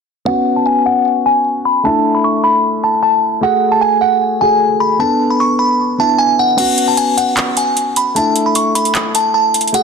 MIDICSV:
0, 0, Header, 1, 4, 480
1, 0, Start_track
1, 0, Tempo, 394737
1, 325, Time_signature, 4, 2, 24, 8
1, 11953, End_track
2, 0, Start_track
2, 0, Title_t, "Synth bell"
2, 0, Program_c, 0, 98
2, 318, Note_on_c, 0, 78, 99
2, 660, Note_off_c, 0, 78, 0
2, 684, Note_on_c, 0, 81, 66
2, 786, Note_off_c, 0, 81, 0
2, 802, Note_on_c, 0, 80, 89
2, 1006, Note_off_c, 0, 80, 0
2, 1043, Note_on_c, 0, 78, 82
2, 1495, Note_off_c, 0, 78, 0
2, 1530, Note_on_c, 0, 80, 83
2, 1978, Note_off_c, 0, 80, 0
2, 2011, Note_on_c, 0, 83, 77
2, 2211, Note_off_c, 0, 83, 0
2, 2248, Note_on_c, 0, 81, 108
2, 2585, Note_off_c, 0, 81, 0
2, 2609, Note_on_c, 0, 83, 67
2, 2709, Note_off_c, 0, 83, 0
2, 2727, Note_on_c, 0, 85, 79
2, 2929, Note_off_c, 0, 85, 0
2, 2963, Note_on_c, 0, 83, 90
2, 3415, Note_off_c, 0, 83, 0
2, 3449, Note_on_c, 0, 81, 70
2, 3650, Note_off_c, 0, 81, 0
2, 3680, Note_on_c, 0, 81, 76
2, 4133, Note_off_c, 0, 81, 0
2, 4173, Note_on_c, 0, 78, 97
2, 4507, Note_off_c, 0, 78, 0
2, 4520, Note_on_c, 0, 81, 74
2, 4623, Note_off_c, 0, 81, 0
2, 4637, Note_on_c, 0, 80, 90
2, 4843, Note_off_c, 0, 80, 0
2, 4877, Note_on_c, 0, 78, 80
2, 5332, Note_off_c, 0, 78, 0
2, 5362, Note_on_c, 0, 80, 82
2, 5815, Note_off_c, 0, 80, 0
2, 5841, Note_on_c, 0, 83, 75
2, 6045, Note_off_c, 0, 83, 0
2, 6079, Note_on_c, 0, 81, 99
2, 6420, Note_off_c, 0, 81, 0
2, 6450, Note_on_c, 0, 83, 79
2, 6549, Note_off_c, 0, 83, 0
2, 6568, Note_on_c, 0, 85, 89
2, 6770, Note_off_c, 0, 85, 0
2, 6797, Note_on_c, 0, 83, 86
2, 7252, Note_off_c, 0, 83, 0
2, 7293, Note_on_c, 0, 81, 80
2, 7492, Note_off_c, 0, 81, 0
2, 7520, Note_on_c, 0, 80, 84
2, 7725, Note_off_c, 0, 80, 0
2, 7774, Note_on_c, 0, 78, 80
2, 7973, Note_off_c, 0, 78, 0
2, 7998, Note_on_c, 0, 78, 102
2, 8339, Note_off_c, 0, 78, 0
2, 8364, Note_on_c, 0, 81, 67
2, 8465, Note_off_c, 0, 81, 0
2, 8481, Note_on_c, 0, 80, 90
2, 8685, Note_off_c, 0, 80, 0
2, 8724, Note_on_c, 0, 78, 84
2, 9175, Note_off_c, 0, 78, 0
2, 9209, Note_on_c, 0, 80, 85
2, 9658, Note_off_c, 0, 80, 0
2, 9689, Note_on_c, 0, 83, 79
2, 9890, Note_off_c, 0, 83, 0
2, 9925, Note_on_c, 0, 81, 108
2, 10263, Note_off_c, 0, 81, 0
2, 10288, Note_on_c, 0, 83, 73
2, 10388, Note_off_c, 0, 83, 0
2, 10406, Note_on_c, 0, 85, 79
2, 10608, Note_off_c, 0, 85, 0
2, 10643, Note_on_c, 0, 83, 90
2, 11095, Note_off_c, 0, 83, 0
2, 11129, Note_on_c, 0, 81, 72
2, 11330, Note_off_c, 0, 81, 0
2, 11360, Note_on_c, 0, 81, 77
2, 11813, Note_off_c, 0, 81, 0
2, 11852, Note_on_c, 0, 78, 103
2, 11953, Note_off_c, 0, 78, 0
2, 11953, End_track
3, 0, Start_track
3, 0, Title_t, "Grand piano"
3, 0, Program_c, 1, 0
3, 306, Note_on_c, 1, 59, 69
3, 324, Note_on_c, 1, 61, 59
3, 341, Note_on_c, 1, 66, 74
3, 585, Control_c, 1, 64, 127
3, 2197, Note_off_c, 1, 59, 0
3, 2206, Note_off_c, 1, 61, 0
3, 2215, Note_off_c, 1, 66, 0
3, 2230, Note_on_c, 1, 57, 64
3, 2247, Note_on_c, 1, 62, 63
3, 2262, Control_c, 1, 64, 0
3, 2264, Note_on_c, 1, 64, 75
3, 2440, Control_c, 1, 64, 127
3, 4118, Note_off_c, 1, 57, 0
3, 4127, Note_off_c, 1, 62, 0
3, 4136, Note_off_c, 1, 64, 0
3, 4146, Note_on_c, 1, 57, 69
3, 4163, Note_on_c, 1, 66, 59
3, 4181, Note_on_c, 1, 68, 75
3, 4182, Control_c, 1, 64, 0
3, 4365, Control_c, 1, 64, 127
3, 5331, Note_off_c, 1, 57, 0
3, 5340, Note_off_c, 1, 66, 0
3, 5349, Note_off_c, 1, 68, 0
3, 5357, Note_on_c, 1, 57, 53
3, 5366, Note_on_c, 1, 66, 43
3, 5375, Note_on_c, 1, 68, 54
3, 6070, Note_on_c, 1, 59, 69
3, 6081, Note_off_c, 1, 57, 0
3, 6085, Note_off_c, 1, 66, 0
3, 6087, Note_on_c, 1, 62, 63
3, 6089, Note_off_c, 1, 68, 0
3, 6100, Control_c, 1, 64, 0
3, 6105, Note_on_c, 1, 69, 73
3, 6278, Control_c, 1, 64, 127
3, 7253, Note_off_c, 1, 59, 0
3, 7262, Note_off_c, 1, 62, 0
3, 7271, Note_off_c, 1, 69, 0
3, 7274, Note_on_c, 1, 59, 48
3, 7283, Note_on_c, 1, 62, 45
3, 7292, Note_on_c, 1, 64, 57
3, 7968, Note_off_c, 1, 59, 0
3, 7986, Note_on_c, 1, 59, 69
3, 8003, Note_on_c, 1, 61, 62
3, 8004, Note_off_c, 1, 62, 0
3, 8008, Note_off_c, 1, 64, 0
3, 8021, Control_c, 1, 64, 0
3, 8021, Note_on_c, 1, 66, 79
3, 8255, Control_c, 1, 64, 127
3, 9877, Note_off_c, 1, 59, 0
3, 9885, Note_off_c, 1, 61, 0
3, 9894, Note_off_c, 1, 66, 0
3, 9909, Note_on_c, 1, 57, 68
3, 9926, Note_on_c, 1, 62, 61
3, 9943, Control_c, 1, 64, 0
3, 9944, Note_on_c, 1, 64, 75
3, 10169, Control_c, 1, 64, 127
3, 11798, Note_off_c, 1, 57, 0
3, 11807, Note_off_c, 1, 62, 0
3, 11816, Note_off_c, 1, 64, 0
3, 11825, Note_on_c, 1, 57, 71
3, 11842, Note_on_c, 1, 66, 62
3, 11860, Control_c, 1, 64, 0
3, 11860, Note_on_c, 1, 68, 82
3, 11953, Note_off_c, 1, 57, 0
3, 11953, Note_off_c, 1, 66, 0
3, 11953, Note_off_c, 1, 68, 0
3, 11953, End_track
4, 0, Start_track
4, 0, Title_t, "Drums"
4, 8005, Note_on_c, 9, 42, 88
4, 8005, Note_on_c, 9, 49, 96
4, 8126, Note_off_c, 9, 49, 0
4, 8127, Note_off_c, 9, 42, 0
4, 8242, Note_on_c, 9, 42, 73
4, 8363, Note_off_c, 9, 42, 0
4, 8480, Note_on_c, 9, 42, 86
4, 8601, Note_off_c, 9, 42, 0
4, 8727, Note_on_c, 9, 42, 83
4, 8848, Note_off_c, 9, 42, 0
4, 8960, Note_on_c, 9, 42, 77
4, 8963, Note_on_c, 9, 39, 104
4, 9081, Note_off_c, 9, 42, 0
4, 9085, Note_off_c, 9, 39, 0
4, 9202, Note_on_c, 9, 42, 82
4, 9323, Note_off_c, 9, 42, 0
4, 9445, Note_on_c, 9, 42, 67
4, 9566, Note_off_c, 9, 42, 0
4, 9683, Note_on_c, 9, 42, 80
4, 9805, Note_off_c, 9, 42, 0
4, 9924, Note_on_c, 9, 42, 84
4, 10046, Note_off_c, 9, 42, 0
4, 10161, Note_on_c, 9, 42, 72
4, 10282, Note_off_c, 9, 42, 0
4, 10399, Note_on_c, 9, 42, 91
4, 10521, Note_off_c, 9, 42, 0
4, 10644, Note_on_c, 9, 42, 88
4, 10765, Note_off_c, 9, 42, 0
4, 10765, Note_on_c, 9, 42, 51
4, 10880, Note_off_c, 9, 42, 0
4, 10880, Note_on_c, 9, 42, 75
4, 10884, Note_on_c, 9, 39, 103
4, 11002, Note_off_c, 9, 42, 0
4, 11005, Note_off_c, 9, 39, 0
4, 11123, Note_on_c, 9, 42, 88
4, 11244, Note_off_c, 9, 42, 0
4, 11604, Note_on_c, 9, 42, 77
4, 11684, Note_off_c, 9, 42, 0
4, 11684, Note_on_c, 9, 42, 61
4, 11765, Note_off_c, 9, 42, 0
4, 11765, Note_on_c, 9, 42, 48
4, 11845, Note_off_c, 9, 42, 0
4, 11845, Note_on_c, 9, 42, 88
4, 11953, Note_off_c, 9, 42, 0
4, 11953, End_track
0, 0, End_of_file